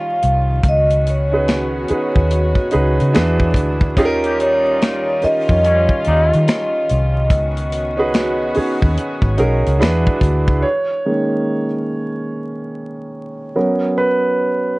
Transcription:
Already playing: string section D#3 G3 C#4 F4, grand piano C#4 D#4 F4 G4 A#4, vibraphone F5
0.22 fingered electric bass C2, closed hi-hat
0.63 fingered electric bass C#2, string section B3 C#4 F#4, kick, closed hi-hat
0.69 vibraphone D#5
0.90 closed hi-hat
1.06 vibraphone C#5, closed hi-hat
1.32 grand piano C#4 D#4 F#4 G#4 B4
1.48 finger snap, snare, closed hi-hat
1.88 grand piano C#4 D#4 F#4 G#4 B4, muted fingered electric bass stroke, closed hi-hat
2.16 fingered electric bass D#2, kick
2.31 closed hi-hat
2.55 kick
2.71 fingered electric bass C#2, grand piano C#4 D#4 F#4 G#4 B4, closed hi-hat
3.00 fingered electric bass C#3, closed hi-hat
3.13 fingered electric bass E2, string section E3 G#3 D4, grand piano D4 E4 F#4 G#4 B4, finger snap, snare, closed hi-hat
3.40 kick
3.54 fingered electric bass D2, kick, closed hi-hat
3.81 kick
3.96 fingered electric bass D#2, string section D#3 G3 C#4 F4, grand piano C#4 D#4 F4 G4 G#4, kick, closed hi-hat
4.05 grand piano A#4
4.24 horn section C#3 A#3 G4, closed hi-hat
4.39 horn section A#2 G3 D#4, vibraphone C#5, closed hi-hat
4.81 finger snap, snare, closed hi-hat
5.21 grand piano C#4 D#4 F4 G4 A#4, vibraphone D#5, muted fingered electric bass stroke, open hi-hat
5.48 fingered electric bass F2, grand piano C#4 D#4 F4 G4 C#5, kick
5.64 horn section A#2 G3 C#4, closed hi-hat
5.89 kick
6.04 fingered electric bass D#2, horn section A#2 G3 D#4, closed hi-hat
6.33 fingered electric bass D#3, closed hi-hat
6.48 finger snap, snare, closed hi-hat
6.89 fingered electric bass C2, closed hi-hat
7.29 fingered electric bass C#2, string section B3 C#4 F#4, kick, closed hi-hat
7.57 closed hi-hat
7.72 closed hi-hat
7.97 grand piano C#4 D#4 F#4 G#4 B4
8.14 finger snap, snare, closed hi-hat
8.54 grand piano C#4 D#4 F#4 G#4 C#5, muted fingered electric bass stroke, open hi-hat
8.82 fingered electric bass D#2, kick
8.97 closed hi-hat
9.22 fingered electric bass G#1, kick
9.37 fingered electric bass B1, grand piano C#4 D#4 F#4 G#4 A#4, closed hi-hat
9.66 fingered electric bass C#2, closed hi-hat
9.79 fingered electric bass E2, string section E3 G#3 D4 F#4, grand piano D4 E4 F#4 G#4 B4, finger snap, snare, closed hi-hat
10.07 kick
10.21 fingered electric bass D2, kick, closed hi-hat
10.48 fingered electric bass C#2, kick
10.62 grand piano C#5
11.06 grand piano D#3 G#3 A#3 C#4
13.55 grand piano F#3 B3 C#4 A#4
13.98 grand piano B4

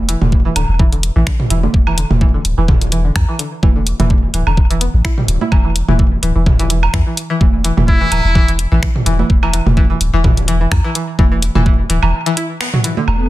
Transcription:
Already playing: sub bass E1
0.09 synth pluck E3, closed hi-hat
0.21 sub bass E1, synth pluck D3, mid tom, high conga
0.32 kick
0.45 synth pluck E3
0.56 sub bass D1, synth pluck D3, closed hi-hat, high woodblock
0.69 sub bass E1
0.79 synth pluck E3, kick
0.92 synth pluck D3, closed hi-hat
1.03 closed hi-hat
1.16 sub bass A1, synth pluck E3
1.27 finger snap, kick
1.40 mid tom
1.50 sub bass E1, synth pluck E3, closed hi-hat
1.63 synth pluck D3, high conga
1.74 sub bass E1, kick
1.87 synth pluck E3, high woodblock
1.98 synth pluck D3, closed hi-hat
2.10 sub bass E1, mid tom, high conga
2.21 synth pluck E3, kick
2.34 synth pluck D3
2.45 sub bass D1, closed hi-hat
2.58 sub bass E1, synth pluck E3
2.68 synth pluck D3, kick, mid tom
2.81 closed hi-hat
2.92 synth pluck E3, closed hi-hat
3.05 synth pluck D3
3.16 sub bass E2, finger snap, kick, high woodblock
3.29 synth pluck E3
3.39 synth pluck D3, closed hi-hat
3.63 sub bass E1, synth pluck E3, kick, high conga
3.76 synth pluck D3
3.87 closed hi-hat
4.00 sub bass E1, synth pluck E3, closed hi-hat, mid tom, high conga
4.10 synth pluck D3, kick
4.34 sub bass D1, synth pluck E3, closed hi-hat
4.47 sub bass E1, synth pluck D3, high woodblock
4.57 kick
4.70 synth pluck E3, closed hi-hat
4.81 synth pluck B3, closed hi-hat
4.94 sub bass A1
5.05 synth pluck E4, finger snap, kick
5.18 synth pluck G3, mid tom
5.28 sub bass D1, closed hi-hat
5.41 synth pluck E4, high conga
5.52 sub bass E1, synth pluck E3, kick, high woodblock
5.65 synth pluck E3
5.76 closed hi-hat
5.88 sub bass E1, synth pluck E3, mid tom, high conga
5.99 synth pluck E3, kick
6.23 sub bass D1, synth pluck E3, closed hi-hat
6.36 sub bass E1, synth pluck E3
6.46 kick, mid tom
6.59 synth pluck E3, closed hi-hat
6.70 synth pluck E3, closed hi-hat
6.83 high woodblock
6.93 sub bass E2, synth pluck E3, finger snap, kick
7.06 synth pluck E3
7.17 closed hi-hat
7.30 synth pluck E3
7.41 sub bass E1, synth pluck E3, kick, high conga
7.64 synth pluck E3, closed hi-hat
7.77 sub bass E1, synth pluck E3, mid tom, high conga
7.88 muted trumpet E4, kick
8.01 synth pluck E3
8.12 sub bass D1, synth pluck E3, closed hi-hat, high woodblock
8.25 sub bass E1
8.35 synth pluck E3, kick
8.48 synth pluck E3, closed hi-hat
8.59 closed hi-hat
8.72 sub bass A1, synth pluck E3
8.83 finger snap, kick
8.96 mid tom
9.06 sub bass E1, synth pluck E3, closed hi-hat
9.19 synth pluck E3, high conga
9.30 sub bass E1, kick
9.43 synth pluck E3, high woodblock
9.53 synth pluck E3, closed hi-hat
9.66 sub bass E1, mid tom, high conga
9.77 synth pluck E3, kick
9.90 synth pluck E3
10.01 sub bass D1, closed hi-hat
10.13 sub bass E1, synth pluck E3
10.24 synth pluck E3, kick, mid tom
10.37 closed hi-hat
10.48 synth pluck E3, closed hi-hat
10.61 synth pluck E3
10.72 sub bass E2, finger snap, kick, high woodblock
10.84 synth pluck E3
10.95 synth pluck E3, closed hi-hat
11.19 sub bass E1, synth pluck E3, kick, high conga
11.32 synth pluck E3
11.42 closed hi-hat
11.55 sub bass E1, synth pluck E3, mid tom, high conga
11.66 synth pluck E3, kick
11.90 sub bass D1, synth pluck E3, closed hi-hat
12.03 sub bass E1, synth pluck E3, high woodblock
12.26 synth pluck E3, closed hi-hat
12.37 synth pluck E4, closed hi-hat
12.61 synth pluck B3, finger snap
12.73 synth pluck F#3, mid tom
12.84 synth pluck E3, closed hi-hat
12.97 synth pluck D3, high conga
13.08 sub bass E1, analog synth pad B3, high woodblock
13.16 analog synth pad A4

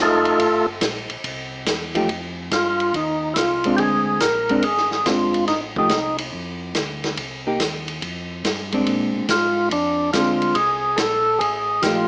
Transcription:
Already playing: tonewheel organ F1
0.02 tonewheel organ A3 D#4 F4 A4
0.25 ride
0.40 tonewheel organ G1, kick, ride
0.81 tonewheel organ A#1, kick, snare, hi-hat pedal, ride
1.10 tonewheel organ A#1, ride
1.24 tonewheel organ C2, kick, ride
1.66 tonewheel organ E2, kick, snare, hi-hat pedal, ride
1.95 hollow-body jazz guitar F3 A3 D#4 G4, ride
2.09 tonewheel organ F2, kick, ride
2.51 tonewheel organ G2 F4, kick, snare, hi-hat pedal, ride
2.80 ride
2.94 tonewheel organ D#2 D#4, kick, ride
3.34 tonewheel organ C2 E4 F4, kick, snare, hi-hat pedal, ride
3.64 hollow-body jazz guitar G#3 C4 D4, ride
3.77 tonewheel organ D2 G4 G#4, kick, ride
4.20 tonewheel organ A#1 A#4, kick, snare, hi-hat pedal, ride
4.49 hollow-body jazz guitar G#3 C4 D4, ride
4.62 tonewheel organ G#1 G#4, kick, ride
4.77 snare
4.91 snare
5.06 tonewheel organ G1 F4, hollow-body jazz guitar G#3 C4 D4, kick, snare, hi-hat pedal, ride
5.34 ride
5.48 tonewheel organ A1 D#4, kick, snare, ride
5.76 hollow-body jazz guitar F3 A3 D#4 G4, tonewheel organ D#4, kick
5.89 tonewheel organ C2, kick, snare, hi-hat pedal, ride
6.18 ride
6.33 tonewheel organ F2, kick
6.75 tonewheel organ D2, kick, snare, hi-hat pedal, ride
7.04 snare, ride
7.17 tonewheel organ C2, kick, ride
7.47 hollow-body jazz guitar A#3 D#4 G4
7.60 tonewheel organ D#2, kick, snare, hi-hat pedal, ride
7.88 ride
8.02 tonewheel organ F2, kick, ride
8.44 tonewheel organ G2, kick, snare, hi-hat pedal, ride
8.72 hollow-body jazz guitar G#3 C4 D4, ride
8.86 tonewheel organ A#2, kick, ride
9.15 tonewheel organ A#2
9.29 tonewheel organ G#2 F4, kick, snare, hi-hat pedal, ride
9.71 tonewheel organ F2 D4, kick, ride
10.13 tonewheel organ D2 F4, hollow-body jazz guitar G#3 C4 D4, kick, snare, hi-hat pedal, ride
10.42 ride
10.55 tonewheel organ C2 G#4, kick, ride
10.96 tonewheel organ A#1 A4, kick, snare, hi-hat pedal, ride
11.39 tonewheel organ A1 G#4, kick, ride
11.82 tonewheel organ A#1 F4, hollow-body jazz guitar F3 A3 D#4 G4, kick, snare, hi-hat pedal, ride

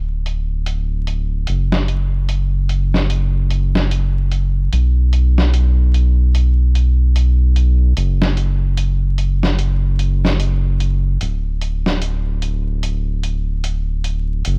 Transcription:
Already playing: analog synth bass D1
0.26 closed hi-hat
0.66 closed hi-hat
1.07 closed hi-hat
1.47 analog synth bass F#1, closed hi-hat
1.72 snare
1.88 closed hi-hat
2.29 closed hi-hat
2.69 closed hi-hat
2.94 snare
3.10 closed hi-hat
3.51 closed hi-hat
3.75 snare
3.91 closed hi-hat
4.31 closed hi-hat
4.72 analog synth bass B1, closed hi-hat
5.13 closed hi-hat
5.38 snare
5.54 closed hi-hat
5.94 closed hi-hat
6.35 closed hi-hat
6.75 closed hi-hat
7.16 closed hi-hat
7.56 closed hi-hat
7.97 analog synth bass F#1, closed hi-hat
8.22 snare
8.37 closed hi-hat
8.77 closed hi-hat
9.18 closed hi-hat
9.43 snare
9.59 closed hi-hat
9.99 closed hi-hat
10.25 snare
10.40 closed hi-hat
10.80 closed hi-hat
11.21 analog synth bass D1, closed hi-hat
11.61 closed hi-hat
11.86 snare
12.02 closed hi-hat
12.42 closed hi-hat
12.83 closed hi-hat
13.23 closed hi-hat
13.64 closed hi-hat
14.04 closed hi-hat
14.45 analog synth bass F#1, closed hi-hat

